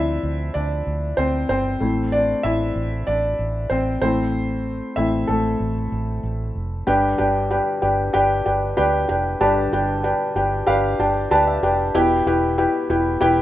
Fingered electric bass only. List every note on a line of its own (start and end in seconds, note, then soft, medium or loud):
0.00 0.17 D2 loud
0.23 0.49 D2 loud
0.55 0.81 D2 loud
0.87 1.12 D2 loud
1.18 1.44 D2 loud
1.49 1.75 G1 medium
1.81 2.33 A1 medium
2.44 2.70 A1 medium
2.76 3.02 A1 loud
3.08 3.34 A1 loud
3.39 3.65 A1 loud
3.71 3.97 A1 medium
4.02 4.80 A1 medium
4.97 5.23 A1 loud
5.29 5.55 A1 loud
5.60 5.86 A1 loud
5.92 6.18 A1 medium
6.23 6.50 A1 loud
6.55 6.81 F1 medium
6.87 7.13 G1 medium
7.19 7.58 G1 medium
7.83 8.09 G1 medium
8.15 8.40 G1 medium
8.46 8.72 G1 medium
8.78 9.04 D2 medium
9.10 9.36 F1 medium
9.41 9.67 G1 medium
9.73 10.12 G1 medium
10.35 10.62 G1 medium
10.68 10.94 G1 loud
10.99 11.25 G1 medium
11.31 11.57 D2 medium
11.63 11.89 F1 medium
11.94 12.21 E1 loud
12.26 12.65 E1 medium
12.90 13.16 E1 medium
13.22 13.42 E1 loud